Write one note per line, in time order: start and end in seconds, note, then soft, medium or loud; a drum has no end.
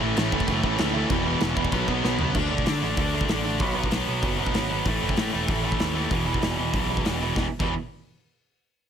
0.01 0.14 A1 medium
0.01 0.15 A2 medium
0.01 0.16 E3 loud
0.01 0.16 A3 loud
0.16 0.29 A1 loud
0.16 0.32 A2 medium
0.16 0.31 E3 medium
0.16 0.31 A3 medium
0.16 snare loud
0.16 crash medium
0.32 0.45 F#1 medium
0.32 0.46 A2 medium
0.32 0.46 E3 medium
0.32 0.47 A3 medium
0.32 kick medium
0.40 kick medium
0.47 0.60 F#1 loud
0.47 0.63 A2 loud
0.47 0.63 E3 loud
0.47 0.62 A3 loud
0.47 kick loud
0.47 crash medium
0.63 0.76 A1 loud
0.63 0.77 A2 medium
0.63 0.78 E3 medium
0.63 0.79 A3 loud
0.63 kick medium
0.78 1.03 D2 medium
0.78 0.94 A2 medium
0.78 0.94 E3 medium
0.78 0.93 A3 loud
0.78 snare loud
0.78 crash medium
0.95 1.10 A2 medium
0.95 1.10 E3 medium
0.95 1.09 A3 loud
1.10 1.34 E1 loud
1.10 1.26 E2 loud
1.10 1.26 B2 loud
1.10 1.25 E3 loud
1.10 kick loud
1.10 crash medium
1.26 1.40 E2 medium
1.26 1.41 B2 loud
1.26 1.41 E3 loud
1.40 1.54 E1 loud
1.40 1.57 E2 medium
1.40 1.56 B2 loud
1.40 1.56 E3 medium
1.40 snare loud
1.40 crash medium
1.57 1.69 E1 medium
1.57 1.72 E2 medium
1.57 1.71 B2 medium
1.57 1.72 E3 loud
1.57 kick loud
1.65 kick medium
1.72 1.84 B1 loud
1.72 1.89 B2 loud
1.72 1.87 F#3 loud
1.72 1.87 B3 loud
1.72 kick loud
1.72 crash medium
1.88 2.00 B1 loud
1.88 2.02 B2 medium
1.88 2.03 F#3 medium
1.88 2.03 B3 loud
1.88 kick medium
2.04 2.16 B1 medium
2.04 2.19 B2 medium
2.04 2.19 F#3 loud
2.04 2.19 B3 loud
2.04 snare medium
2.19 2.32 C#2 medium
2.19 2.35 B2 medium
2.19 2.35 F#3 medium
2.19 2.34 B3 medium
2.19 floor tom loud
2.35 2.48 D2 loud
2.35 2.50 D3 medium
2.35 2.50 A3 loud
2.35 2.49 D4 loud
2.35 kick loud
2.35 crash loud
2.50 2.64 B1 medium
2.50 2.64 D3 medium
2.50 2.65 A3 medium
2.50 2.65 D4 loud
2.58 kick medium
2.66 2.82 D3 medium
2.66 2.79 D3 medium
2.66 2.82 A3 loud
2.66 2.81 D4 loud
2.66 snare loud
2.66 open hi-hat medium
2.82 2.95 A1 medium
2.82 2.96 D3 medium
2.82 2.97 A3 medium
2.82 2.97 D4 medium
2.97 3.23 D2 medium
2.97 3.13 D3 medium
2.97 3.12 A3 medium
2.97 3.12 D4 loud
2.97 kick loud
2.97 open hi-hat medium
3.13 3.28 D3 medium
3.13 3.29 A3 medium
3.13 3.29 D4 medium
3.21 kick medium
3.28 3.60 A1 medium
3.28 3.44 D3 medium
3.28 3.44 A3 loud
3.28 3.44 D4 medium
3.28 snare loud
3.28 open hi-hat medium
3.45 3.60 D3 medium
3.45 3.60 A3 medium
3.45 3.59 D4 medium
3.60 3.86 B1 medium
3.60 3.75 B2 medium
3.60 3.75 F#3 loud
3.60 3.75 B3 loud
3.60 kick loud
3.60 open hi-hat soft
3.76 3.90 B2 medium
3.76 3.90 F#3 medium
3.76 3.91 B3 medium
3.84 kick medium
3.91 4.05 B1 medium
3.91 4.06 B2 medium
3.91 4.06 F#3 loud
3.91 4.05 B3 loud
3.91 snare loud
3.91 open hi-hat medium
4.06 4.20 B1 medium
4.06 4.20 B2 medium
4.06 4.21 F#3 medium
4.06 4.21 B3 medium
4.21 4.49 F#1 medium
4.21 4.37 B2 medium
4.21 4.36 F#3 medium
4.21 4.36 B3 loud
4.21 kick loud
4.21 open hi-hat medium
4.37 4.52 B2 medium
4.37 4.53 F#3 medium
4.37 4.53 B3 medium
4.46 kick medium
4.53 4.81 G#1 medium
4.53 4.69 B2 medium
4.53 4.69 F#3 loud
4.53 4.68 B3 loud
4.53 snare loud
4.53 open hi-hat medium
4.69 4.85 B2 medium
4.69 4.85 F#3 medium
4.69 4.84 B3 medium
4.85 4.98 A1 medium
4.85 5.01 A2 loud
4.85 5.01 E3 medium
4.85 4.99 A3 loud
4.85 kick loud
4.85 open hi-hat medium
5.00 5.14 F#1 medium
5.00 5.16 A2 medium
5.00 5.17 E3 medium
5.00 5.17 A3 medium
5.09 kick medium
5.17 5.32 A2 medium
5.17 5.30 A2 medium
5.17 5.32 E3 loud
5.17 5.31 A3 loud
5.17 snare loud
5.17 open hi-hat medium
5.32 5.46 E1 medium
5.32 5.48 A2 medium
5.32 5.49 E3 medium
5.32 5.48 A3 medium
5.48 5.74 A1 medium
5.48 5.63 A2 medium
5.48 5.64 E3 medium
5.48 5.62 A3 medium
5.48 kick loud
5.48 open hi-hat medium
5.64 5.78 A2 medium
5.64 5.79 E3 medium
5.64 5.79 A3 medium
5.72 kick medium
5.79 6.06 D#2 medium
5.79 5.94 A2 medium
5.79 5.95 E3 medium
5.79 5.94 A3 medium
5.79 snare loud
5.79 open hi-hat medium
5.95 6.10 A2 medium
5.95 6.12 E3 medium
5.95 6.10 A3 medium
6.11 6.37 E1 medium
6.11 6.27 E2 medium
6.11 6.26 B2 medium
6.11 6.26 E3 loud
6.11 kick loud
6.11 open hi-hat soft
6.27 6.42 E2 medium
6.27 6.42 B2 medium
6.27 6.43 E3 loud
6.34 kick medium
6.42 6.55 E1 medium
6.42 6.58 E2 medium
6.42 6.58 B2 medium
6.42 6.57 E3 medium
6.42 snare loud
6.42 open hi-hat soft
6.58 6.71 E1 medium
6.58 6.73 E2 medium
6.58 6.74 B2 medium
6.58 6.74 E3 medium
6.74 7.00 B1 medium
6.74 6.89 E2 medium
6.74 6.89 B2 medium
6.74 6.88 E3 medium
6.74 kick loud
6.74 open hi-hat medium
6.89 7.03 E2 medium
6.89 7.04 B2 medium
6.89 7.04 E3 medium
6.97 kick medium
7.05 7.31 E1 medium
7.05 7.20 E2 medium
7.05 7.19 B2 medium
7.05 7.19 E3 loud
7.05 snare loud
7.05 open hi-hat medium
7.20 7.34 E2 medium
7.20 7.35 B2 medium
7.20 7.35 E3 medium
7.35 7.45 E1 medium
7.35 7.45 E2 medium
7.35 7.46 B2 medium
7.35 7.46 E3 medium
7.35 kick loud
7.35 snare medium
7.59 7.75 E1 medium
7.59 7.72 E2 medium
7.59 7.73 B2 loud
7.59 7.73 E3 medium
7.59 kick loud
7.59 crash medium